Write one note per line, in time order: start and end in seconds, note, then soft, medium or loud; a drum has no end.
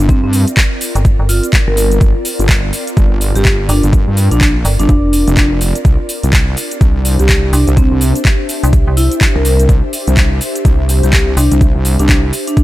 0.00 0.21 G1 loud
0.00 6.96 C4 medium
0.00 5.85 F4 medium
0.00 7.17 A#4 medium
0.00 6.60 D5 medium
0.00 shaker soft
0.09 0.18 C4 medium
0.09 kick loud
0.09 closed hi-hat medium
0.09 shaker soft
0.23 0.45 G2 loud
0.23 0.30 C4 medium
0.33 open hi-hat loud
0.33 shaker medium
0.47 closed hi-hat medium
0.47 shaker soft
0.57 kick loud
0.57 clap loud
0.57 closed hi-hat medium
0.57 shaker soft
0.81 open hi-hat loud
0.81 shaker medium
0.95 1.17 G1 loud
0.95 closed hi-hat medium
0.95 shaker soft
1.05 kick loud
1.05 closed hi-hat medium
1.05 shaker soft
1.19 1.41 G1 loud
1.29 1.43 F4 medium
1.29 open hi-hat loud
1.29 shaker medium
1.43 closed hi-hat medium
1.43 shaker soft
1.53 kick loud
1.53 clap loud
1.53 closed hi-hat medium
1.53 shaker soft
1.67 1.99 G1 loud
1.67 1.74 A#4 medium
1.77 1.86 A#4 medium
1.77 open hi-hat loud
1.77 shaker medium
1.92 closed hi-hat medium
1.92 shaker soft
2.01 2.13 G1 medium
2.01 kick loud
2.01 closed hi-hat medium
2.01 shaker soft
2.25 open hi-hat loud
2.25 shaker medium
2.39 2.71 G1 loud
2.39 closed hi-hat medium
2.39 shaker soft
2.49 kick loud
2.49 clap loud
2.49 closed hi-hat medium
2.49 shaker soft
2.73 open hi-hat loud
2.73 shaker medium
2.87 closed hi-hat medium
2.87 shaker soft
2.97 3.33 G1 loud
2.97 kick loud
2.97 closed hi-hat medium
2.97 shaker soft
3.21 open hi-hat loud
3.21 shaker medium
3.35 3.67 G1 loud
3.35 3.42 G4 medium
3.35 closed hi-hat medium
3.35 shaker soft
3.45 3.54 G4 medium
3.45 kick loud
3.45 clap loud
3.45 closed hi-hat medium
3.45 shaker soft
3.69 3.81 G1 loud
3.69 3.83 D4 medium
3.69 open hi-hat loud
3.69 shaker medium
3.83 4.05 G1 medium
3.83 closed hi-hat medium
3.83 shaker soft
3.93 kick loud
3.93 closed hi-hat medium
3.93 shaker soft
4.07 4.29 G2 loud
4.17 open hi-hat loud
4.17 shaker medium
4.31 4.63 A#1 loud
4.31 4.40 D4 medium
4.31 closed hi-hat medium
4.31 shaker soft
4.41 kick loud
4.41 clap loud
4.41 closed hi-hat soft
4.41 shaker soft
4.65 4.77 G1 loud
4.65 open hi-hat loud
4.65 shaker medium
4.79 4.87 G1 medium
4.79 5.46 D4 loud
4.79 closed hi-hat medium
4.79 shaker soft
4.89 5.25 F1 loud
4.89 kick loud
4.89 closed hi-hat medium
4.89 shaker soft
5.13 open hi-hat loud
5.13 shaker medium
5.28 5.73 F1 loud
5.28 closed hi-hat medium
5.28 shaker soft
5.37 kick loud
5.37 clap loud
5.37 closed hi-hat medium
5.37 shaker soft
5.61 open hi-hat loud
5.61 shaker medium
5.75 closed hi-hat medium
5.75 shaker soft
5.85 5.97 C2 medium
5.85 12.63 D4 medium
5.85 kick loud
5.85 closed hi-hat medium
5.85 shaker soft
6.09 open hi-hat loud
6.09 shaker medium
6.19 12.63 G4 medium
6.23 6.55 C2 medium
6.23 closed hi-hat medium
6.23 shaker soft
6.33 kick loud
6.33 clap loud
6.33 closed hi-hat medium
6.33 shaker soft
6.57 12.63 C5 medium
6.57 open hi-hat loud
6.57 shaker medium
6.71 closed hi-hat medium
6.71 shaker soft
6.81 7.17 C2 loud
6.81 kick loud
6.81 closed hi-hat soft
6.81 shaker soft
7.05 open hi-hat loud
7.05 shaker medium
7.19 7.51 C2 loud
7.19 7.26 G4 medium
7.19 closed hi-hat medium
7.19 shaker soft
7.24 12.63 E5 medium
7.29 7.38 G4 medium
7.29 kick loud
7.29 clap loud
7.29 closed hi-hat soft
7.29 shaker soft
7.53 7.65 C2 loud
7.53 7.67 D4 medium
7.53 open hi-hat loud
7.53 shaker medium
7.67 7.89 C2 medium
7.67 closed hi-hat medium
7.67 shaker soft
7.77 7.86 C4 medium
7.77 kick loud
7.77 closed hi-hat medium
7.77 shaker soft
7.91 8.13 C2 loud
7.91 7.98 C4 medium
8.01 open hi-hat loud
8.01 shaker medium
8.15 closed hi-hat medium
8.15 shaker soft
8.25 kick loud
8.25 clap loud
8.25 closed hi-hat medium
8.25 shaker soft
8.49 open hi-hat loud
8.49 shaker medium
8.63 8.85 C2 loud
8.63 closed hi-hat medium
8.63 shaker soft
8.73 kick loud
8.73 closed hi-hat medium
8.73 shaker soft
8.87 9.09 C2 loud
8.97 9.11 E4 medium
8.97 open hi-hat loud
8.97 shaker medium
9.12 closed hi-hat medium
9.12 shaker soft
9.21 kick loud
9.21 clap loud
9.21 closed hi-hat medium
9.21 shaker soft
9.35 9.67 C2 loud
9.35 9.42 A#4 medium
9.45 9.54 A#4 medium
9.45 open hi-hat loud
9.45 shaker medium
9.60 closed hi-hat medium
9.60 shaker soft
9.69 9.81 C2 loud
9.69 kick loud
9.69 closed hi-hat medium
9.69 shaker soft
9.93 open hi-hat loud
9.93 shaker medium
10.07 10.39 C2 loud
10.07 closed hi-hat medium
10.07 shaker soft
10.17 kick loud
10.17 clap loud
10.17 closed hi-hat medium
10.17 shaker soft
10.41 open hi-hat loud
10.41 shaker medium
10.55 closed hi-hat medium
10.55 shaker soft
10.65 11.01 C2 loud
10.65 kick loud
10.65 closed hi-hat medium
10.65 shaker soft
10.89 open hi-hat loud
10.89 shaker medium
11.03 11.35 C2 loud
11.03 11.10 G4 medium
11.03 closed hi-hat medium
11.03 shaker soft
11.13 11.22 G4 medium
11.13 kick loud
11.13 clap loud
11.13 closed hi-hat medium
11.13 shaker soft
11.37 11.49 C2 medium
11.37 11.51 D4 medium
11.37 open hi-hat loud
11.37 shaker medium
11.51 11.73 C2 loud
11.51 closed hi-hat medium
11.51 shaker soft
11.61 kick loud
11.61 closed hi-hat medium
11.61 shaker soft
11.75 11.97 C2 loud
11.85 open hi-hat loud
11.85 shaker medium
11.99 12.31 C2 medium
11.99 12.08 D4 medium
11.99 closed hi-hat medium
11.99 shaker soft
12.09 kick loud
12.09 clap loud
12.09 closed hi-hat medium
12.09 shaker soft
12.33 open hi-hat loud
12.33 shaker medium
12.47 12.63 D4 medium
12.47 closed hi-hat medium
12.47 shaker soft
12.57 kick loud
12.57 closed hi-hat medium
12.57 shaker soft